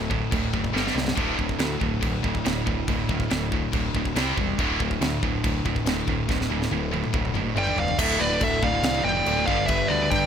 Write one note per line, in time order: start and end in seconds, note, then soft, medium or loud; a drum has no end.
0.00 0.21 D1 medium
0.00 0.73 D2 medium
0.00 0.73 A2 medium
0.00 0.74 D3 loud
0.10 0.29 D2 medium
0.10 0.29 A2 medium
0.10 kick medium
0.31 0.48 D1 loud
0.31 0.51 D2 medium
0.31 0.51 A2 medium
0.31 kick loud
0.31 crash medium
0.53 0.70 F#1 medium
0.53 0.72 D2 medium
0.53 0.72 A2 medium
0.53 kick medium
0.64 kick medium
0.73 0.89 G1 medium
0.73 0.93 G2 medium
0.73 0.93 D3 medium
0.73 0.94 G3 loud
0.73 snare medium
0.87 snare medium
0.94 1.11 C2 medium
0.94 1.14 G2 medium
0.94 1.14 D3 medium
0.94 snare medium
1.08 snare medium
1.15 1.33 D1 loud
1.15 1.35 D2 medium
1.15 1.36 A2 loud
1.15 1.37 D3 loud
1.15 kick loud
1.15 crash medium
1.36 1.55 D1 medium
1.36 1.57 D2 medium
1.36 1.57 A2 medium
1.36 kick medium
1.49 kick medium
1.59 1.78 D2 medium
1.59 1.75 D2 medium
1.59 1.78 A2 medium
1.59 snare loud
1.59 crash medium
1.80 1.97 D1 medium
1.80 2.00 D2 medium
1.80 2.00 A2 medium
1.80 kick medium
2.01 2.18 D1 medium
2.01 2.21 D2 medium
2.01 2.21 A2 medium
2.01 kick loud
2.01 crash medium
2.23 2.40 D1 medium
2.23 2.42 D2 medium
2.23 2.43 A2 medium
2.23 kick medium
2.35 kick medium
2.45 2.61 D1 medium
2.45 2.64 D2 medium
2.45 2.64 A2 medium
2.45 snare loud
2.45 crash medium
2.66 2.83 D1 medium
2.66 2.86 D2 medium
2.66 2.86 A2 medium
2.66 kick medium
2.88 3.04 D1 loud
2.88 3.07 D2 medium
2.88 3.07 A2 medium
2.88 4.15 D3 loud
2.88 kick loud
2.88 crash medium
3.09 3.25 D1 medium
3.09 3.28 D2 medium
3.09 3.28 A2 medium
3.09 kick medium
3.20 kick medium
3.30 3.63 D1 medium
3.30 3.49 D2 medium
3.30 3.49 A2 medium
3.30 snare loud
3.30 crash medium
3.51 3.71 D2 medium
3.51 3.71 A2 medium
3.51 kick medium
3.72 3.89 D1 medium
3.72 3.92 D2 medium
3.72 3.92 A2 medium
3.72 kick loud
3.72 crash medium
3.94 4.11 D1 medium
3.94 4.13 D2 medium
3.94 4.13 A2 medium
3.94 kick loud
4.05 kick medium
4.15 4.31 C2 medium
4.15 4.36 C3 medium
4.15 4.36 G3 loud
4.15 4.36 C4 loud
4.15 snare loud
4.15 crash medium
4.37 4.53 E1 medium
4.37 4.56 C3 medium
4.37 4.56 G3 medium
4.37 kick medium
4.58 4.74 D1 loud
4.58 4.78 D2 medium
4.58 4.79 A2 medium
4.58 4.79 D3 medium
4.58 kick loud
4.58 crash medium
4.80 4.96 D1 medium
4.80 4.99 D2 medium
4.80 4.99 A2 medium
4.80 kick medium
4.91 kick medium
5.01 5.17 D2 medium
5.01 5.20 D2 medium
5.01 5.20 A2 medium
5.01 snare loud
5.01 crash medium
5.22 5.39 D1 medium
5.22 5.41 D2 medium
5.22 5.42 A2 medium
5.22 kick medium
5.43 5.60 D1 medium
5.43 5.63 D2 medium
5.43 5.63 A2 medium
5.43 kick loud
5.43 crash medium
5.65 5.81 D1 medium
5.65 5.84 D2 medium
5.65 5.84 A2 medium
5.65 kick loud
5.76 kick medium
5.84 6.01 D1 medium
5.84 6.05 D2 medium
5.84 6.05 A2 medium
5.84 snare loud
5.84 crash medium
6.07 6.23 D1 medium
6.07 6.26 D2 medium
6.07 6.27 A2 medium
6.07 kick medium
6.28 6.45 D1 loud
6.28 6.48 D2 medium
6.28 6.48 A2 medium
6.28 7.55 D3 loud
6.28 kick loud
6.28 snare medium
6.41 snare medium
6.49 6.66 D1 loud
6.49 6.69 D2 medium
6.49 6.69 A2 medium
6.62 snare medium
6.70 7.03 D1 medium
6.70 6.90 D2 medium
6.70 6.90 A2 loud
6.70 high tom medium
6.91 7.11 D2 medium
6.91 7.11 A2 medium
6.91 high tom medium
7.04 mid tom medium
7.13 7.30 D1 loud
7.13 7.32 D2 medium
7.13 7.32 A2 medium
7.13 kick loud
7.25 mid tom medium
7.34 7.50 F#1 medium
7.34 7.54 D2 medium
7.34 7.54 A2 medium
7.34 mid tom loud
7.55 7.71 G1 medium
7.55 7.75 G2 medium
7.55 7.76 D3 medium
7.55 7.76 G3 medium
7.55 7.77 D5 medium
7.55 7.79 G5 loud
7.55 mid tom loud
7.67 floor tom medium
7.76 7.93 F1 medium
7.76 7.96 G2 medium
7.76 7.96 D3 medium
7.76 7.98 D5 medium
7.76 7.99 F5 medium
7.76 floor tom loud
7.88 floor tom medium
7.98 8.16 D1 loud
7.98 8.19 D2 medium
7.98 8.18 A2 loud
7.98 8.19 D3 medium
7.98 8.18 A4 loud
7.98 8.21 E5 loud
7.98 kick loud
7.98 crash loud
7.98 crash medium
8.19 8.37 D1 medium
8.19 8.29 D2 medium
8.19 8.29 A2 medium
8.19 8.40 B4 medium
8.19 8.42 D5 medium
8.30 8.39 D2 medium
8.30 8.39 A2 medium
8.41 8.58 D1 loud
8.41 8.60 D2 loud
8.41 8.60 A2 medium
8.41 8.61 A4 medium
8.41 8.63 E5 medium
8.41 kick medium
8.41 crash medium
8.62 8.80 D1 loud
8.62 8.72 D2 medium
8.62 8.71 A2 medium
8.62 8.83 D5 medium
8.62 8.84 F5 loud
8.62 kick loud
8.72 8.83 D2 medium
8.72 8.83 A2 medium
8.82 9.00 C2 medium
8.82 8.94 D2 medium
8.82 8.93 A2 medium
8.82 9.04 D5 loud
8.82 9.04 F5 loud
8.82 snare loud
8.82 crash medium
8.95 9.05 D2 medium
8.95 9.04 A2 medium
9.03 9.22 F1 medium
9.03 9.15 D2 medium
9.03 9.14 A2 medium
9.03 9.24 D3 loud
9.03 9.46 G5 loud
9.08 9.46 D5 medium
9.16 9.25 D2 medium
9.16 9.25 A2 medium
9.26 9.43 D1 medium
9.26 9.36 D2 medium
9.26 9.36 A2 loud
9.26 9.48 D3 medium
9.26 crash medium
9.37 9.47 D2 medium
9.37 9.47 A2 medium
9.46 9.65 G1 medium
9.46 9.57 G2 loud
9.46 9.56 D3 loud
9.46 9.57 G3 loud
9.46 9.68 D5 medium
9.46 9.66 F5 medium
9.46 kick medium
9.57 9.67 G2 medium
9.57 9.68 D3 medium
9.66 9.86 G1 loud
9.66 9.88 G2 medium
9.66 9.88 D3 medium
9.66 9.88 B4 medium
9.66 9.90 E5 medium
9.66 kick loud
9.66 crash medium
9.88 10.08 D2 medium
9.88 10.00 G2 medium
9.88 10.00 D3 medium
9.88 10.10 B4 medium
9.88 10.09 D5 medium
10.01 10.10 G2 medium
10.01 10.10 D3 medium
10.11 10.26 G2 medium
10.11 10.26 D3 loud
10.11 10.26 D5 medium
10.11 10.26 G5 medium
10.11 kick medium
10.11 crash medium